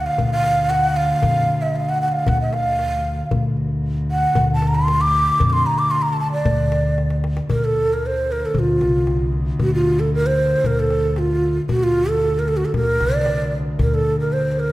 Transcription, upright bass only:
0.19 1.11 D2 medium
1.23 1.46 F2 loud
2.28 3.20 D2 loud
3.31 4.24 D2 medium
4.36 5.29 D2 medium
5.40 5.64 F2 loud
6.45 7.38 D2 loud
7.50 8.43 D2 medium
8.55 8.78 D2 medium
8.81 9.51 C2 medium
9.60 10.52 D2 medium
10.64 11.57 D2 medium
11.69 12.62 D2 medium
12.74 12.98 D2 medium
13.01 13.70 C2 medium
13.79 14.72 D2 medium

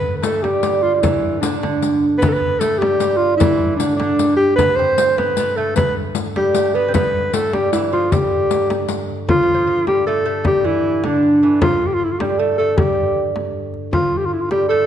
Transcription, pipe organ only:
0.00 4.56 G2 medium
0.00 4.57 D3 medium
4.58 9.27 G2 medium
4.58 9.28 D3 medium
9.29 13.91 G2 medium
9.29 13.92 D3 medium
13.93 14.86 G2 medium
13.93 14.86 D3 medium

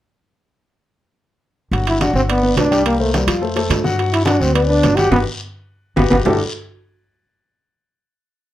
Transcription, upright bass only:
1.71 2.11 G1 medium
2.13 2.53 G1 medium
2.57 3.22 C2 medium
3.27 3.67 F2 medium
3.70 4.35 G2 medium
4.41 4.80 D2 medium
4.84 5.10 G1 medium
5.11 5.22 G1 medium
5.97 6.07 G1 medium
6.11 6.22 G1 medium
6.26 6.39 G1 medium

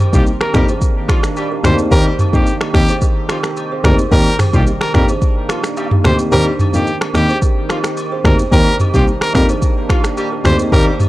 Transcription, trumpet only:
0.14 0.25 G4 medium
0.41 0.52 A#4 medium
0.55 0.66 A#4 medium
1.65 1.77 C5 medium
1.92 2.04 A#4 loud
2.34 2.57 G4 medium
2.75 2.98 G4 medium
3.85 3.97 A#4 medium
4.12 4.35 A#4 loud
4.54 4.65 G4 medium
4.82 4.93 A#4 medium
4.95 5.07 A#4 medium
6.05 6.17 C5 medium
6.32 6.44 A#4 loud
6.74 6.97 G4 medium
7.15 7.38 G4 medium
8.25 8.37 A#4 medium
8.53 8.76 A#4 loud
8.94 9.05 G4 medium
9.22 9.33 A#4 medium
9.35 9.47 A#4 medium
10.45 10.57 C5 medium
10.73 10.85 A#4 loud

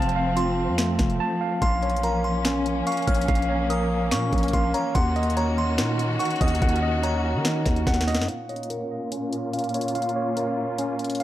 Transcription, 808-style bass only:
0.00 0.70 F1 loud
0.68 0.98 F2 loud
0.99 1.19 F1 loud
1.62 2.83 A#1 loud
3.07 3.28 A#1 loud
3.28 4.13 A#1 loud
4.12 4.32 A#2 loud
4.33 4.53 A#1 loud
4.53 4.73 A#1 loud
4.95 5.80 D#2 loud
5.78 6.18 A#2 loud
6.41 6.61 D#2 loud
6.62 7.36 D#2 loud
7.35 7.64 D#3 loud
7.66 7.86 D#2 loud
7.87 8.20 D#2 loud
8.18 8.28 F#2 loud

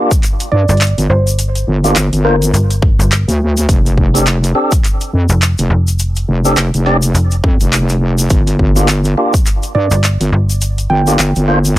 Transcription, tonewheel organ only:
0.00 0.12 A#3 medium
0.00 0.12 D4 medium
0.00 0.12 F4 medium
0.00 0.12 G4 loud
1.84 1.97 A#3 medium
1.84 1.97 D4 medium
1.84 1.97 F4 medium
1.84 1.97 G4 loud
2.25 2.36 A#3 medium
2.25 2.36 D4 medium
2.25 2.36 F4 medium
2.25 2.36 C5 medium
4.14 4.28 C4 medium
4.14 4.28 D4 medium
4.14 4.28 G4 medium
4.14 4.28 A4 medium
4.55 4.73 C4 medium
4.55 4.73 D4 medium
4.55 4.73 G4 medium
4.55 4.73 A4 medium
6.45 6.58 C4 medium
6.45 6.58 D4 medium
6.45 6.59 G4 medium
6.45 6.59 A4 loud
6.86 6.97 C4 medium
6.86 6.97 D4 medium
6.86 6.97 G4 medium
6.86 6.97 D5 medium
8.76 8.89 A#3 medium
8.76 8.89 D4 medium
8.76 8.89 F4 medium
8.76 8.89 G4 medium
9.17 9.35 A#3 medium
9.17 9.35 D4 medium
9.17 9.35 F4 medium
9.17 9.35 G4 loud
11.07 11.20 A#3 medium
11.07 11.20 D4 medium
11.07 11.20 F4 medium
11.07 11.20 G4 loud
11.48 11.59 A#3 medium
11.48 11.59 D4 medium
11.48 11.59 F4 medium
11.48 11.59 C5 medium

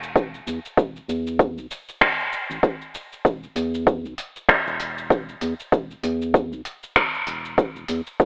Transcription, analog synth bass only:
0.00 0.40 E1 loud
0.47 0.59 E2 medium
0.77 1.00 E1 loud
1.08 1.58 E2 medium
1.57 1.66 B1 medium
2.50 2.59 A1 medium
3.25 3.48 E1 medium
3.56 4.06 E2 medium
4.04 4.14 B1 medium
4.66 5.35 E1 loud
5.41 5.54 E2 medium
5.72 5.95 E1 loud
6.03 6.53 E2 medium
6.52 6.61 B1 loud
7.27 7.67 E1 medium
7.75 7.85 E1 medium
7.89 8.01 E2 medium
8.20 8.25 E1 loud

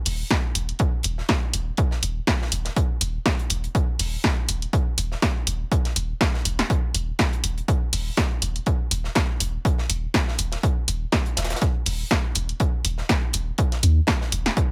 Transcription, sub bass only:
0.06 0.23 D#1 loud
0.55 0.72 D#1 medium
1.04 1.21 D#1 loud
1.54 1.70 D#1 medium
2.03 2.19 D#1 medium
2.52 2.68 D#1 medium
3.01 3.18 D#1 loud
3.50 3.67 D#1 medium
3.99 4.16 D#1 loud
4.49 4.65 D#1 medium
4.98 5.14 D#1 loud
5.47 5.64 D#1 medium
5.96 6.13 D#1 medium
6.45 6.62 D#1 medium
6.94 7.11 D#1 loud
7.44 7.60 D#1 medium
7.93 8.09 D#1 loud
8.42 8.59 D#1 medium
8.91 9.08 D#1 loud
9.40 9.57 D#1 medium
9.90 10.06 D#1 loud
10.39 10.55 D#1 medium
10.88 11.05 D#1 loud
11.37 11.54 D#1 medium
11.86 12.03 D#1 loud
12.36 12.52 D#1 medium
12.85 13.01 D#1 loud
13.34 13.50 D#1 medium
13.83 14.00 D#2 loud
14.32 14.49 D#1 medium

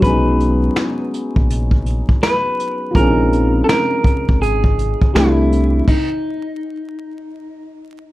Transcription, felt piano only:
0.00 2.89 F#3 medium
0.00 2.90 G#3 medium
0.00 2.92 B3 medium
0.06 2.93 C#4 medium
0.06 2.94 D#4 medium
2.91 5.08 F3 medium
2.91 5.10 G#3 medium
2.96 5.11 C4 medium
2.96 5.12 C#4 medium
3.02 3.06 D4 medium
3.08 5.17 D#4 medium
5.13 5.87 G3 medium
5.13 5.88 A3 medium
5.13 5.88 C4 medium
5.13 5.89 D4 medium
5.19 5.90 E4 medium

